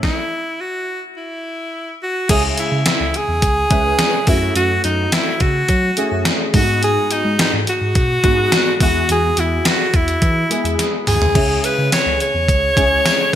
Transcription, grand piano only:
2.29 C#3 G#3 C#4 E4 G#4
3.70 G#3 C#4 E4 B4
4.27 A3 C#4 E4 F#4
5.97 A3 C#4 E4 G#4
6.54 G#2 G#3 A3 D#4 F#4
6.61 B3
8.23 G#3 B3 D#4 F#4
8.81 E3 G#3 B3 E4 F#4
10.50 G#3 B3 E4 G#4
11.34 C#3 G#3 C#4 E4 G#4
12.76 G#3 C#4 E4 G#4

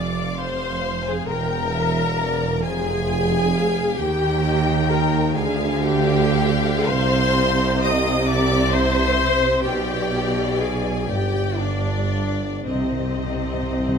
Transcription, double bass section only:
Already playing: F1
1.28 E1
2.64 F1
3.99 D#2
5.35 D2
6.87 C2
9.64 B1
11.09 G1
12.67 C2

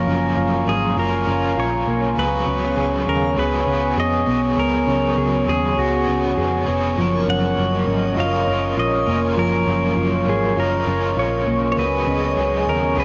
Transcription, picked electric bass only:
0.07 F#1
0.37 F#1
0.67 G#1
0.97 F#1
1.27 F#1
1.57 A#1
1.87 B1
2.17 C#2
2.47 C#2
2.77 C#2
3.07 D#2
3.37 C#2
3.67 C#2
3.97 F2
4.27 B1
4.57 C#2
4.87 C#2
5.17 C#2
5.48 D#2
5.77 C#2
6.08 C#2
6.37 F2
6.68 F1
6.97 F#1
7.27 F#1
7.58 F#1
7.87 G#1
8.17 F#1
8.47 F#1
8.77 A#1
9.07 F1
9.37 F#1
9.67 F#1
9.97 F#1
10.27 G#1
10.57 F#1
10.87 F#1
11.17 A#1
11.47 B1
11.77 C#2
12.07 C#2
12.37 C#2
12.67 D#2
12.97 C#2

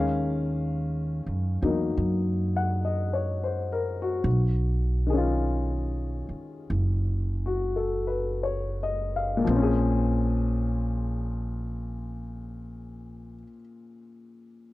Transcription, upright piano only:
Already playing: D#3 G#3 C#4 F5
1.62 F#3 A#3 D#4
2.56 F#5
2.85 D#5
3.13 C#5
3.44 C5
3.72 A#4
4.02 F#4
5.07 D#3 G#4
5.13 C#4 F4
7.46 F#4
7.76 A4
8.07 B4
8.43 C#5
8.83 D#5
9.16 F5
9.37 A#2
9.44 F3
9.50 C4
9.56 C#4
9.62 G#4

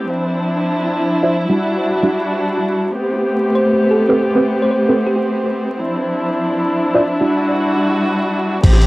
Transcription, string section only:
Already playing: C4
0.06 F3 D4 E4
1.49 G3 D4 F#4
2.92 A3 B3 C4 G4
5.78 F3 D4 E4
7.21 G3 F#4
8.64 A3 B3 C4 G4

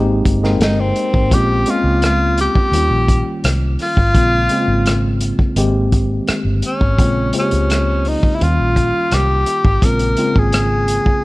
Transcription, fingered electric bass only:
Already playing: G#1
0.26 G1
0.60 G1
1.14 G#1
1.32 A#1
1.84 C#2
2.72 D#2
2.90 A#1
3.44 C2
3.97 G#1
4.14 A#1
4.68 G#1
5.56 G#1
6.29 muted fingered electric bass stroke
6.44 G1
6.81 G#1
6.98 A#1
7.52 C#2
8.41 D#2
8.59 A#1
9.12 C2
9.65 G#1
9.82 A#1
10.36 G#1

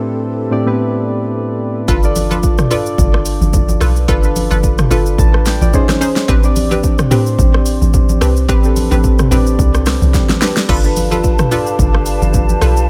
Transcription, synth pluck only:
1.88 F4 A4 B4
2.31 F4 A4 B4
2.71 F4 A4 B4
3.81 F4 A4 B4
4.08 F4 A4 B4
4.51 F4 A4 B4
4.91 F4 A4 B4
6.01 C#4 D#4 G#4 C5
6.28 C4 D4 G4 B4
6.71 C4 D4 G4 B4
7.11 C4 D4 G4 B4
8.21 C4 D4 G4 B4
8.49 C4 D4 G4 B4
8.91 C4 D4 G4 B4
9.31 C4 D4 G4 B4
10.41 C4 D4 G4 B4
10.69 F4 A4 B4
11.11 F4 A4 B4
11.51 F4 A4 B4
12.61 F4 A4 B4

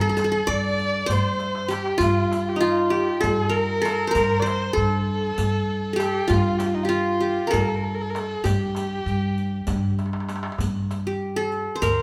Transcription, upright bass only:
Already playing: G2
0.48 G2
1.09 G2
2.00 G2
3.24 G2
4.15 G2
4.77 G2
5.38 G2
6.30 G2
7.54 G2
8.45 G2
9.06 G2
9.68 G2
10.59 G2
11.82 D2

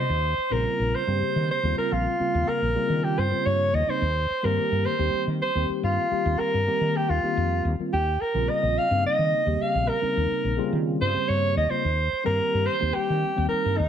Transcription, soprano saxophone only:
Already playing: C5
0.52 A#4
0.95 C5
1.51 C5
1.78 A#4
1.93 F4
2.49 A#4
3.04 G4
3.19 C5
3.46 C#5
3.75 D#5
3.90 C5
4.45 A#4
4.86 C5
5.42 C5
5.84 F4
6.39 A#4
6.96 G4
7.09 F4
7.93 G4
8.21 A#4
8.49 D#5
8.78 F5
9.06 D#5
9.62 F5
9.88 A#4
11.01 C5
11.28 C#5
11.57 D#5
11.70 C5
12.26 A#4
12.66 C5
12.94 G4
13.49 A#4
13.77 D#4

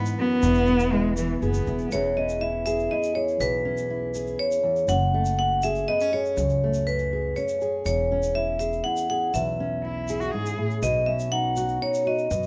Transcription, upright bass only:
0.43 E1
1.42 F#1
1.67 E1
1.92 E1
3.40 B1
4.88 F#1
6.37 C#2
7.85 E1
9.34 B1
10.82 B1
12.31 F#2

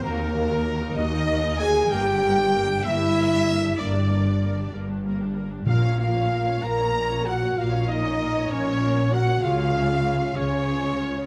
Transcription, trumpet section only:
0.02 A#4
0.97 D#5
1.59 G#5
1.90 G5
2.84 E5
3.79 D5
5.67 F5
5.99 F5
6.63 A#5
7.26 F#5
7.57 F5
7.88 D#5
8.50 C#5
9.12 F#5
9.42 F5
10.36 C#5

